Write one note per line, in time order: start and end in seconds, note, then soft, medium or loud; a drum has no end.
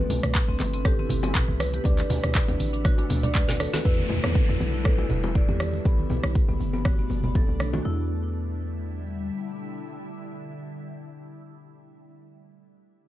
0.00 1.83 C3 medium
0.00 1.83 E4 loud
0.00 1.83 B4 medium
0.10 0.20 C2 medium
0.10 open hi-hat medium
0.10 high bongo medium
0.10 muted conga medium
0.10 low conga loud
0.10 shaker medium
0.23 0.41 C2 loud
0.23 cross-stick medium
0.23 closed hi-hat soft
0.23 mid tom medium
0.23 high conga medium
0.23 shaker soft
0.35 kick loud
0.35 clap loud
0.35 closed hi-hat medium
0.35 low bongo medium
0.35 shaker medium
0.48 0.57 C2 loud
0.48 0.55 C4 medium
0.48 shaker soft
0.59 1.05 G1 medium
0.59 clap soft
0.59 open hi-hat medium
0.59 low bongo medium
0.59 muted conga soft
0.59 high conga medium
0.59 shaker medium
0.74 0.84 C4 medium
0.74 closed hi-hat soft
0.74 shaker soft
0.85 0.92 G4 medium
0.85 1.04 A4 medium
0.85 kick loud
0.85 cross-stick medium
0.85 closed hi-hat medium
0.85 shaker soft
0.98 1.10 C4 medium
0.98 low bongo medium
0.98 muted conga soft
0.98 shaker soft
1.09 1.48 G1 loud
1.09 open hi-hat medium
1.09 low conga loud
1.09 shaker medium
1.23 1.34 C4 medium
1.23 closed hi-hat soft
1.23 high bongo loud
1.23 low bongo medium
1.23 shaker soft
1.35 1.42 B4 loud
1.35 kick loud
1.35 clap loud
1.35 closed hi-hat medium
1.35 mid tom loud
1.35 muted conga soft
1.35 shaker medium
1.48 1.80 C2 medium
1.48 high conga medium
1.48 shaker soft
1.60 1.67 B4 medium
1.60 1.79 B4 medium
1.60 cross-stick medium
1.60 open hi-hat medium
1.60 low bongo medium
1.60 high conga medium
1.60 shaker medium
1.73 1.84 G4 medium
1.73 closed hi-hat soft
1.73 muted conga medium
1.73 shaker soft
1.84 2.04 D2 loud
1.84 3.83 D3 medium
1.84 3.83 A3 medium
1.84 1.97 D4 medium
1.84 3.83 F#4 loud
1.84 1.94 D5 loud
1.84 kick loud
1.84 closed hi-hat medium
1.84 low bongo medium
1.84 shaker medium
1.98 2.06 D5 medium
1.98 clap soft
1.98 closed hi-hat soft
1.98 high conga medium
1.98 shaker soft
2.10 2.20 D2 medium
2.10 open hi-hat medium
2.10 high bongo medium
2.10 muted conga medium
2.10 low conga loud
2.10 shaker medium
2.23 2.41 D2 loud
2.23 cross-stick medium
2.23 closed hi-hat soft
2.23 mid tom medium
2.23 low bongo medium
2.23 high conga medium
2.23 shaker soft
2.35 kick loud
2.35 clap loud
2.35 closed hi-hat medium
2.35 shaker medium
2.48 2.57 D2 loud
2.48 2.55 D4 medium
2.48 closed hi-hat soft
2.48 low bongo loud
2.48 shaker soft
2.59 3.05 A1 medium
2.59 open hi-hat medium
2.59 muted conga soft
2.59 high conga medium
2.59 shaker medium
2.73 2.84 D4 medium
2.73 closed hi-hat soft
2.73 shaker soft
2.84 2.92 F#4 medium
2.84 kick loud
2.84 cross-stick medium
2.84 closed hi-hat medium
2.84 low bongo medium
2.84 high conga medium
2.84 shaker medium
2.98 3.09 D4 medium
2.98 closed hi-hat soft
2.98 high bongo medium
2.98 muted conga medium
2.98 shaker soft
3.10 3.68 D2 medium
3.10 mid tom medium
3.10 open hi-hat medium
3.10 low bongo medium
3.10 shaker medium
3.23 3.34 D4 medium
3.23 3.31 D5 loud
3.23 closed hi-hat soft
3.23 low conga loud
3.23 shaker soft
3.35 3.42 B4 loud
3.35 3.44 D5 medium
3.35 kick loud
3.35 clap loud
3.35 closed hi-hat medium
3.35 high tom medium
3.35 muted conga soft
3.35 shaker medium
3.48 snare medium
3.48 closed hi-hat soft
3.48 mid tom medium
3.48 low bongo medium
3.48 low conga medium
3.48 shaker soft
3.60 3.69 A4 medium
3.60 3.68 B4 medium
3.60 cross-stick medium
3.60 open hi-hat medium
3.60 high conga medium
3.60 shaker medium
3.73 3.84 F#4 medium
3.73 3.81 A4 medium
3.73 snare medium
3.73 closed hi-hat soft
3.73 high bongo loud
3.73 low bongo medium
3.73 muted conga medium
3.73 high conga loud
3.73 shaker soft
3.85 4.04 E2 loud
3.85 5.83 D3 medium
3.85 5.83 G3 medium
3.85 5.83 E4 loud
3.85 3.97 E4 medium
3.85 4.04 B4 medium
3.85 kick loud
3.85 downlifter medium
3.85 shaker medium
3.99 low bongo medium
3.99 high conga medium
3.99 shaker soft
4.09 4.20 E2 medium
4.09 high bongo medium
4.09 muted conga medium
4.09 low conga medium
4.09 shaker medium
4.23 4.41 E2 loud
4.23 cross-stick medium
4.23 low bongo loud
4.23 high conga medium
4.23 shaker soft
4.35 kick loud
4.35 shaker soft
4.49 4.57 E2 loud
4.49 4.55 E4 medium
4.49 shaker soft
4.60 5.05 B1 medium
4.60 low bongo medium
4.60 muted conga soft
4.60 high conga medium
4.60 shaker medium
4.74 4.84 E4 medium
4.74 shaker soft
4.84 5.04 A4 medium
4.84 4.92 B4 medium
4.84 kick loud
4.84 cross-stick medium
4.84 low bongo medium
4.84 shaker medium
4.98 5.09 E4 medium
4.98 high bongo medium
4.98 muted conga medium
4.98 shaker soft
5.10 5.48 E1 loud
5.10 low conga loud
5.10 shaker loud
5.23 5.34 E4 medium
5.23 high bongo loud
5.23 low bongo medium
5.23 shaker soft
5.35 5.42 D5 loud
5.35 kick loud
5.35 muted conga soft
5.35 shaker medium
5.48 5.80 E2 medium
5.48 5.56 G4 medium
5.48 low bongo medium
5.48 high conga medium
5.48 shaker soft
5.60 5.69 G4 medium
5.60 5.67 D5 medium
5.60 cross-stick medium
5.60 high conga medium
5.60 shaker medium
5.73 5.84 B4 medium
5.73 muted conga medium
5.73 shaker soft
5.85 6.04 B1 loud
5.85 7.83 B2 medium
5.85 7.83 A3 medium
5.85 5.97 B3 medium
5.85 7.83 D4 loud
5.85 kick loud
5.85 low bongo medium
5.85 shaker medium
5.99 high conga medium
5.99 shaker soft
6.10 6.20 B1 medium
6.10 low bongo medium
6.10 muted conga soft
6.10 low conga loud
6.10 shaker medium
6.23 6.41 B1 medium
6.23 cross-stick medium
6.23 high conga medium
6.23 shaker soft
6.35 kick loud
6.35 shaker medium
6.48 6.57 B1 medium
6.48 6.55 B3 medium
6.48 low bongo medium
6.48 shaker soft
6.59 7.05 F#1 medium
6.59 muted conga soft
6.59 high conga medium
6.59 shaker medium
6.73 6.84 B3 medium
6.73 low bongo medium
6.73 shaker soft
6.85 6.93 F#4 medium
6.85 kick loud
6.85 cross-stick medium
6.85 high conga medium
6.85 shaker medium
6.98 7.10 B3 medium
6.98 muted conga medium
6.98 shaker soft
7.10 7.48 F#1 medium
7.10 low bongo medium
7.10 shaker medium
7.24 7.34 B3 medium
7.24 low conga loud
7.24 shaker soft
7.35 7.42 A4 loud
7.35 kick loud
7.35 low bongo medium
7.35 muted conga soft
7.35 shaker soft
7.49 7.80 B1 medium
7.49 shaker soft
7.60 7.67 A4 medium
7.60 cross-stick medium
7.60 high conga medium
7.60 shaker medium
7.73 7.84 F#4 medium
7.73 high bongo medium
7.73 low bongo medium
7.73 muted conga medium
7.73 high conga loud
7.73 shaker soft
7.85 9.31 E2 medium
7.85 11.97 D3 medium
7.85 11.97 G3 medium
7.85 11.97 E4 medium
7.85 8.08 E4 medium